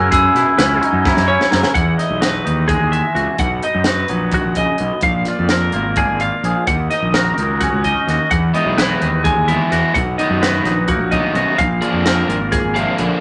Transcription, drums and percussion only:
0.12 kick, closed hi-hat
0.36 snare, closed hi-hat
0.59 snare, closed hi-hat
0.83 closed hi-hat
1.05 kick, snare
1.17 snare
1.41 snare
1.52 snare
1.63 snare
1.75 kick, closed hi-hat
1.99 snare, closed hi-hat
2.22 snare, closed hi-hat
2.47 closed hi-hat
2.69 kick, closed hi-hat
2.93 closed hi-hat
3.16 closed hi-hat
3.38 kick, closed hi-hat
3.63 closed hi-hat
3.84 snare, closed hi-hat
4.08 closed hi-hat
4.32 kick, closed hi-hat
4.55 kick, closed hi-hat
4.78 closed hi-hat
5.01 kick, closed hi-hat
5.25 snare, closed hi-hat
5.49 snare, closed hi-hat
5.72 closed hi-hat
5.96 kick, closed hi-hat
6.20 closed hi-hat
6.44 closed hi-hat
6.67 kick, closed hi-hat
6.91 snare, closed hi-hat
7.14 snare, closed hi-hat
7.38 closed hi-hat
7.61 kick, closed hi-hat
7.84 kick, closed hi-hat
8.09 snare, closed hi-hat
8.31 kick, closed hi-hat
8.55 closed hi-hat
8.78 snare, closed hi-hat
9.02 closed hi-hat
9.25 kick, closed hi-hat
9.48 closed hi-hat
9.72 snare, closed hi-hat
9.95 kick, closed hi-hat
10.19 closed hi-hat
10.43 snare, closed hi-hat
10.65 snare, closed hi-hat
10.88 kick, closed hi-hat
11.12 kick, closed hi-hat
11.35 closed hi-hat
11.58 kick, closed hi-hat
11.82 closed hi-hat
12.06 snare, closed hi-hat
12.30 closed hi-hat
12.52 kick, snare, closed hi-hat
12.76 closed hi-hat
12.98 closed hi-hat

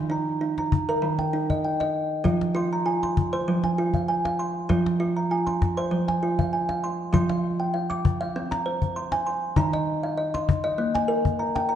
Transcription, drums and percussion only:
0.58 cajon slap
0.72 cajon bass
0.89 cajon slap
1.19 cajon slap
1.50 cajon bass
1.81 cajon slap
2.25 cajon bass
2.41 cajon slap
3.03 cajon slap
3.17 cajon bass
3.34 cajon slap
3.64 cajon slap
3.94 cajon bass
4.25 cajon slap
4.70 cajon bass, cajon slap
4.86 cajon slap
5.31 cajon slap
5.47 cajon slap
5.62 cajon bass, cajon slap
5.93 cajon slap
6.08 cajon slap
6.39 cajon bass
6.69 cajon slap
7.14 cajon bass
7.29 cajon slap
7.91 cajon slap
8.05 cajon bass
8.52 cajon slap
8.82 cajon bass
9.12 cajon slap
9.56 cajon bass
9.73 cajon slap
10.35 cajon slap
10.49 cajon bass
10.95 cajon slap
11.25 cajon bass
11.56 cajon slap

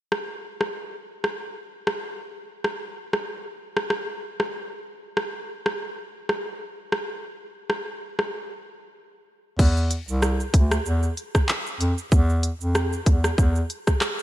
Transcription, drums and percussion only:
0.12 cross-stick
0.61 cross-stick
1.24 cross-stick
1.87 cross-stick
2.64 cross-stick
3.13 cross-stick
3.77 cross-stick
3.90 cross-stick
4.40 cross-stick
5.17 cross-stick
5.66 cross-stick
6.29 cross-stick
6.92 cross-stick
7.70 cross-stick
8.19 cross-stick
9.59 kick, crash, shaker
9.77 shaker
9.91 closed hi-hat, shaker
10.08 shaker
10.22 cross-stick, shaker
10.40 shaker
10.54 kick, closed hi-hat, shaker
10.71 cross-stick, shaker
10.86 shaker
11.03 shaker
11.17 closed hi-hat, shaker
11.35 kick, cross-stick, shaker
11.49 clap, shaker
11.67 shaker
11.81 closed hi-hat, shaker
11.98 shaker
12.12 kick, shaker
12.30 shaker
12.43 closed hi-hat, shaker
12.61 shaker
12.75 cross-stick, shaker
12.93 shaker
13.06 kick, closed hi-hat, shaker
13.24 cross-stick, shaker
13.38 kick, shaker
13.56 shaker
13.70 closed hi-hat, shaker
13.87 kick, cross-stick, shaker
14.01 cross-stick, clap, shaker
14.19 shaker

